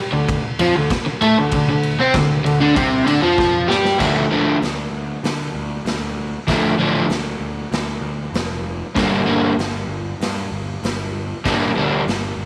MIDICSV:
0, 0, Header, 1, 6, 480
1, 0, Start_track
1, 0, Key_signature, -1, "minor"
1, 0, Tempo, 621118
1, 1173, Time_signature, 4, 2, 24, 8
1, 9624, End_track
2, 0, Start_track
2, 0, Title_t, "Overdriven electric guitar"
2, 0, Program_c, 0, 29
2, 93, Note_on_c, 0, 50, 72
2, 285, Note_off_c, 0, 50, 0
2, 460, Note_on_c, 0, 53, 77
2, 469, Note_on_c, 0, 65, 87
2, 569, Note_off_c, 0, 53, 0
2, 574, Note_off_c, 0, 65, 0
2, 589, Note_on_c, 0, 50, 74
2, 701, Note_off_c, 0, 50, 0
2, 937, Note_on_c, 0, 57, 102
2, 943, Note_on_c, 0, 69, 114
2, 1048, Note_off_c, 0, 57, 0
2, 1051, Note_off_c, 0, 69, 0
2, 1067, Note_on_c, 0, 50, 77
2, 1180, Note_off_c, 0, 50, 0
2, 1188, Note_on_c, 0, 50, 73
2, 1298, Note_off_c, 0, 50, 0
2, 1307, Note_on_c, 0, 50, 69
2, 1492, Note_off_c, 0, 50, 0
2, 1538, Note_on_c, 0, 60, 78
2, 1546, Note_on_c, 0, 72, 99
2, 1649, Note_off_c, 0, 60, 0
2, 1653, Note_off_c, 0, 72, 0
2, 1663, Note_on_c, 0, 50, 71
2, 1850, Note_off_c, 0, 50, 0
2, 1890, Note_on_c, 0, 50, 89
2, 2003, Note_off_c, 0, 50, 0
2, 2012, Note_on_c, 0, 50, 83
2, 2021, Note_on_c, 0, 62, 110
2, 2125, Note_off_c, 0, 50, 0
2, 2128, Note_on_c, 0, 48, 86
2, 2130, Note_off_c, 0, 62, 0
2, 2138, Note_on_c, 0, 60, 104
2, 2359, Note_off_c, 0, 48, 0
2, 2362, Note_on_c, 0, 50, 89
2, 2368, Note_off_c, 0, 60, 0
2, 2372, Note_on_c, 0, 62, 104
2, 2481, Note_off_c, 0, 50, 0
2, 2485, Note_off_c, 0, 62, 0
2, 2490, Note_on_c, 0, 53, 96
2, 2496, Note_on_c, 0, 65, 111
2, 2842, Note_on_c, 0, 55, 86
2, 2844, Note_off_c, 0, 53, 0
2, 2847, Note_off_c, 0, 65, 0
2, 2847, Note_on_c, 0, 67, 106
2, 3080, Note_off_c, 0, 55, 0
2, 3080, Note_on_c, 0, 50, 88
2, 3083, Note_off_c, 0, 67, 0
2, 3085, Note_on_c, 0, 53, 86
2, 3089, Note_on_c, 0, 57, 107
2, 3091, Note_on_c, 0, 62, 87
2, 3278, Note_off_c, 0, 50, 0
2, 3281, Note_off_c, 0, 53, 0
2, 3283, Note_off_c, 0, 57, 0
2, 3284, Note_off_c, 0, 62, 0
2, 3331, Note_on_c, 0, 50, 85
2, 3333, Note_on_c, 0, 53, 81
2, 3337, Note_on_c, 0, 57, 101
2, 3341, Note_on_c, 0, 62, 102
2, 3524, Note_off_c, 0, 50, 0
2, 3525, Note_off_c, 0, 53, 0
2, 3527, Note_off_c, 0, 57, 0
2, 3529, Note_off_c, 0, 62, 0
2, 5001, Note_on_c, 0, 50, 86
2, 5012, Note_on_c, 0, 57, 100
2, 5013, Note_on_c, 0, 53, 82
2, 5022, Note_on_c, 0, 62, 80
2, 5199, Note_off_c, 0, 50, 0
2, 5205, Note_off_c, 0, 53, 0
2, 5205, Note_off_c, 0, 57, 0
2, 5209, Note_off_c, 0, 62, 0
2, 5241, Note_on_c, 0, 50, 81
2, 5247, Note_on_c, 0, 53, 95
2, 5252, Note_on_c, 0, 57, 95
2, 5256, Note_on_c, 0, 62, 110
2, 5439, Note_off_c, 0, 50, 0
2, 5442, Note_off_c, 0, 53, 0
2, 5445, Note_off_c, 0, 57, 0
2, 5447, Note_off_c, 0, 62, 0
2, 6919, Note_on_c, 0, 43, 83
2, 6924, Note_on_c, 0, 50, 85
2, 6930, Note_on_c, 0, 55, 98
2, 6936, Note_on_c, 0, 58, 104
2, 6941, Note_on_c, 0, 62, 92
2, 7118, Note_off_c, 0, 43, 0
2, 7121, Note_off_c, 0, 50, 0
2, 7124, Note_off_c, 0, 55, 0
2, 7127, Note_off_c, 0, 58, 0
2, 7129, Note_off_c, 0, 62, 0
2, 7152, Note_on_c, 0, 43, 80
2, 7156, Note_on_c, 0, 50, 96
2, 7166, Note_on_c, 0, 55, 97
2, 7169, Note_on_c, 0, 58, 104
2, 7169, Note_on_c, 0, 62, 97
2, 7354, Note_off_c, 0, 43, 0
2, 7357, Note_off_c, 0, 50, 0
2, 7362, Note_off_c, 0, 55, 0
2, 7363, Note_off_c, 0, 58, 0
2, 7363, Note_off_c, 0, 62, 0
2, 8845, Note_on_c, 0, 43, 80
2, 8845, Note_on_c, 0, 50, 97
2, 8850, Note_on_c, 0, 55, 83
2, 8856, Note_on_c, 0, 58, 100
2, 8860, Note_on_c, 0, 62, 98
2, 9041, Note_off_c, 0, 43, 0
2, 9041, Note_off_c, 0, 50, 0
2, 9044, Note_off_c, 0, 55, 0
2, 9047, Note_off_c, 0, 58, 0
2, 9048, Note_off_c, 0, 62, 0
2, 9085, Note_on_c, 0, 43, 97
2, 9093, Note_on_c, 0, 50, 89
2, 9099, Note_on_c, 0, 55, 86
2, 9103, Note_on_c, 0, 58, 86
2, 9110, Note_on_c, 0, 62, 100
2, 9281, Note_off_c, 0, 43, 0
2, 9285, Note_off_c, 0, 50, 0
2, 9288, Note_off_c, 0, 55, 0
2, 9290, Note_off_c, 0, 58, 0
2, 9294, Note_off_c, 0, 62, 0
2, 9624, End_track
3, 0, Start_track
3, 0, Title_t, "Picked electric bass"
3, 0, Program_c, 1, 34
3, 97, Note_on_c, 1, 38, 85
3, 318, Note_off_c, 1, 38, 0
3, 458, Note_on_c, 1, 41, 92
3, 567, Note_off_c, 1, 41, 0
3, 583, Note_on_c, 1, 38, 82
3, 690, Note_off_c, 1, 38, 0
3, 944, Note_on_c, 1, 45, 105
3, 1051, Note_off_c, 1, 45, 0
3, 1060, Note_on_c, 1, 38, 76
3, 1165, Note_off_c, 1, 38, 0
3, 1169, Note_on_c, 1, 38, 86
3, 1283, Note_off_c, 1, 38, 0
3, 1300, Note_on_c, 1, 38, 96
3, 1520, Note_off_c, 1, 38, 0
3, 1540, Note_on_c, 1, 48, 109
3, 1648, Note_off_c, 1, 48, 0
3, 1653, Note_on_c, 1, 38, 77
3, 1877, Note_off_c, 1, 38, 0
3, 1886, Note_on_c, 1, 38, 68
3, 2001, Note_off_c, 1, 38, 0
3, 2013, Note_on_c, 1, 38, 90
3, 2125, Note_off_c, 1, 38, 0
3, 2132, Note_on_c, 1, 36, 85
3, 2356, Note_off_c, 1, 36, 0
3, 2365, Note_on_c, 1, 38, 86
3, 2480, Note_off_c, 1, 38, 0
3, 2488, Note_on_c, 1, 41, 99
3, 2825, Note_off_c, 1, 41, 0
3, 2842, Note_on_c, 1, 43, 104
3, 3070, Note_off_c, 1, 43, 0
3, 3089, Note_on_c, 1, 38, 100
3, 3281, Note_off_c, 1, 38, 0
3, 3328, Note_on_c, 1, 38, 78
3, 3520, Note_off_c, 1, 38, 0
3, 3566, Note_on_c, 1, 38, 84
3, 3760, Note_off_c, 1, 38, 0
3, 3791, Note_on_c, 1, 38, 83
3, 3990, Note_off_c, 1, 38, 0
3, 4046, Note_on_c, 1, 50, 85
3, 4239, Note_off_c, 1, 50, 0
3, 4282, Note_on_c, 1, 38, 87
3, 4477, Note_off_c, 1, 38, 0
3, 4521, Note_on_c, 1, 38, 83
3, 4907, Note_off_c, 1, 38, 0
3, 5011, Note_on_c, 1, 38, 95
3, 5202, Note_off_c, 1, 38, 0
3, 5237, Note_on_c, 1, 33, 94
3, 5434, Note_off_c, 1, 33, 0
3, 5472, Note_on_c, 1, 38, 80
3, 5671, Note_off_c, 1, 38, 0
3, 5715, Note_on_c, 1, 38, 78
3, 5913, Note_off_c, 1, 38, 0
3, 5962, Note_on_c, 1, 38, 90
3, 6157, Note_off_c, 1, 38, 0
3, 6190, Note_on_c, 1, 38, 86
3, 6390, Note_off_c, 1, 38, 0
3, 6430, Note_on_c, 1, 29, 86
3, 6821, Note_off_c, 1, 29, 0
3, 6928, Note_on_c, 1, 31, 105
3, 7121, Note_off_c, 1, 31, 0
3, 7164, Note_on_c, 1, 31, 90
3, 7358, Note_off_c, 1, 31, 0
3, 7399, Note_on_c, 1, 31, 95
3, 7595, Note_off_c, 1, 31, 0
3, 7633, Note_on_c, 1, 31, 84
3, 7832, Note_off_c, 1, 31, 0
3, 7887, Note_on_c, 1, 43, 89
3, 8080, Note_off_c, 1, 43, 0
3, 8128, Note_on_c, 1, 31, 90
3, 8321, Note_off_c, 1, 31, 0
3, 8367, Note_on_c, 1, 31, 93
3, 8751, Note_off_c, 1, 31, 0
3, 8851, Note_on_c, 1, 31, 93
3, 9043, Note_off_c, 1, 31, 0
3, 9091, Note_on_c, 1, 38, 75
3, 9282, Note_off_c, 1, 38, 0
3, 9325, Note_on_c, 1, 31, 95
3, 9519, Note_off_c, 1, 31, 0
3, 9560, Note_on_c, 1, 31, 79
3, 9624, Note_off_c, 1, 31, 0
3, 9624, End_track
4, 0, Start_track
4, 0, Title_t, "Muted overdriven electric guitar strokes"
4, 711, Note_on_c, 9, 29, 57
4, 788, Note_off_c, 9, 29, 0
4, 820, Note_on_c, 9, 29, 67
4, 898, Note_off_c, 9, 29, 0
4, 9624, End_track
5, 0, Start_track
5, 0, Title_t, "Muted picked electric bass strokes"
5, 696, Note_on_c, 9, 29, 40
5, 774, Note_off_c, 9, 29, 0
5, 830, Note_on_c, 9, 29, 41
5, 907, Note_off_c, 9, 29, 0
5, 9624, End_track
6, 0, Start_track
6, 0, Title_t, "Drums"
6, 220, Note_on_c, 9, 36, 127
6, 223, Note_on_c, 9, 51, 107
6, 298, Note_off_c, 9, 36, 0
6, 300, Note_off_c, 9, 51, 0
6, 457, Note_on_c, 9, 51, 84
6, 534, Note_off_c, 9, 51, 0
6, 698, Note_on_c, 9, 36, 115
6, 698, Note_on_c, 9, 51, 115
6, 709, Note_on_c, 9, 38, 109
6, 776, Note_off_c, 9, 36, 0
6, 776, Note_off_c, 9, 51, 0
6, 786, Note_off_c, 9, 38, 0
6, 939, Note_on_c, 9, 51, 66
6, 1017, Note_off_c, 9, 51, 0
6, 1170, Note_on_c, 9, 51, 109
6, 1176, Note_on_c, 9, 36, 116
6, 1247, Note_off_c, 9, 51, 0
6, 1253, Note_off_c, 9, 36, 0
6, 1416, Note_on_c, 9, 51, 63
6, 1493, Note_off_c, 9, 51, 0
6, 1652, Note_on_c, 9, 51, 105
6, 1654, Note_on_c, 9, 36, 112
6, 1662, Note_on_c, 9, 38, 109
6, 1729, Note_off_c, 9, 51, 0
6, 1732, Note_off_c, 9, 36, 0
6, 1739, Note_off_c, 9, 38, 0
6, 1902, Note_on_c, 9, 51, 72
6, 1979, Note_off_c, 9, 51, 0
6, 2136, Note_on_c, 9, 36, 127
6, 2139, Note_on_c, 9, 51, 112
6, 2214, Note_off_c, 9, 36, 0
6, 2216, Note_off_c, 9, 51, 0
6, 2376, Note_on_c, 9, 51, 70
6, 2453, Note_off_c, 9, 51, 0
6, 2613, Note_on_c, 9, 36, 112
6, 2624, Note_on_c, 9, 38, 66
6, 2690, Note_off_c, 9, 36, 0
6, 2701, Note_off_c, 9, 38, 0
6, 2864, Note_on_c, 9, 38, 92
6, 2941, Note_off_c, 9, 38, 0
6, 2977, Note_on_c, 9, 38, 102
6, 3054, Note_off_c, 9, 38, 0
6, 3092, Note_on_c, 9, 49, 105
6, 3094, Note_on_c, 9, 36, 122
6, 3102, Note_on_c, 9, 38, 114
6, 3169, Note_off_c, 9, 49, 0
6, 3171, Note_off_c, 9, 36, 0
6, 3179, Note_off_c, 9, 38, 0
6, 3572, Note_on_c, 9, 46, 51
6, 3582, Note_on_c, 9, 38, 101
6, 3649, Note_off_c, 9, 46, 0
6, 3659, Note_off_c, 9, 38, 0
6, 4051, Note_on_c, 9, 46, 63
6, 4061, Note_on_c, 9, 38, 125
6, 4128, Note_off_c, 9, 46, 0
6, 4138, Note_off_c, 9, 38, 0
6, 4529, Note_on_c, 9, 46, 58
6, 4539, Note_on_c, 9, 38, 103
6, 4607, Note_off_c, 9, 46, 0
6, 4617, Note_off_c, 9, 38, 0
6, 5008, Note_on_c, 9, 46, 61
6, 5009, Note_on_c, 9, 36, 112
6, 5018, Note_on_c, 9, 38, 121
6, 5085, Note_off_c, 9, 46, 0
6, 5086, Note_off_c, 9, 36, 0
6, 5095, Note_off_c, 9, 38, 0
6, 5485, Note_on_c, 9, 46, 58
6, 5495, Note_on_c, 9, 38, 102
6, 5562, Note_off_c, 9, 46, 0
6, 5572, Note_off_c, 9, 38, 0
6, 5968, Note_on_c, 9, 46, 58
6, 5978, Note_on_c, 9, 38, 112
6, 6046, Note_off_c, 9, 46, 0
6, 6056, Note_off_c, 9, 38, 0
6, 6447, Note_on_c, 9, 46, 54
6, 6457, Note_on_c, 9, 38, 107
6, 6524, Note_off_c, 9, 46, 0
6, 6534, Note_off_c, 9, 38, 0
6, 6926, Note_on_c, 9, 46, 54
6, 6927, Note_on_c, 9, 36, 118
6, 6936, Note_on_c, 9, 38, 114
6, 7004, Note_off_c, 9, 46, 0
6, 7005, Note_off_c, 9, 36, 0
6, 7014, Note_off_c, 9, 38, 0
6, 7411, Note_on_c, 9, 46, 58
6, 7421, Note_on_c, 9, 38, 112
6, 7488, Note_off_c, 9, 46, 0
6, 7498, Note_off_c, 9, 38, 0
6, 7893, Note_on_c, 9, 46, 70
6, 7903, Note_on_c, 9, 38, 114
6, 7971, Note_off_c, 9, 46, 0
6, 7981, Note_off_c, 9, 38, 0
6, 8375, Note_on_c, 9, 46, 56
6, 8385, Note_on_c, 9, 38, 103
6, 8452, Note_off_c, 9, 46, 0
6, 8462, Note_off_c, 9, 38, 0
6, 8850, Note_on_c, 9, 46, 56
6, 8853, Note_on_c, 9, 36, 108
6, 8860, Note_on_c, 9, 38, 108
6, 8928, Note_off_c, 9, 46, 0
6, 8930, Note_off_c, 9, 36, 0
6, 8938, Note_off_c, 9, 38, 0
6, 9335, Note_on_c, 9, 46, 60
6, 9345, Note_on_c, 9, 38, 106
6, 9412, Note_off_c, 9, 46, 0
6, 9422, Note_off_c, 9, 38, 0
6, 9624, End_track
0, 0, End_of_file